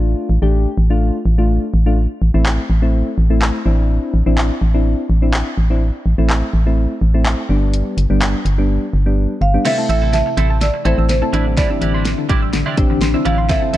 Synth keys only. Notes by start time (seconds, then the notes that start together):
Already playing: A3 D4 F4
0.42 A3 D4 G4
0.90 A3 D4 F4
1.38 A3 D4 F4
1.86 A3 D4 F4
2.34 A3 C4 E4
2.82 A3 C4 E4
3.30 A3 C4 E4
3.65 C4 D4 E4
4.26 C4 D4 E4
4.74 C4 D4 E4
5.22 C4 D4 E4
5.70 C4 D4 E4
6.18 A3 C4 E4
6.66 A3 C4 E4
7.14 A3 C4 E4
7.49 G3 B3 D4
8.10 G3 B3 D4
8.58 G3 B3 D4
9.06 G3 B3 D4
9.54 G3 B3 D4
9.65 A3 C4 E4
9.78 A3 C4 E4
10.85 A3 C4 E4
11.22 A3 C4 E4
11.33 C4 D4 E4
11.70 C4 D4 E4
12.77 C4 D4 G4
13.14 C4 D4 E4
13.49 C4 E4 A4
13.62 C4 E4 A4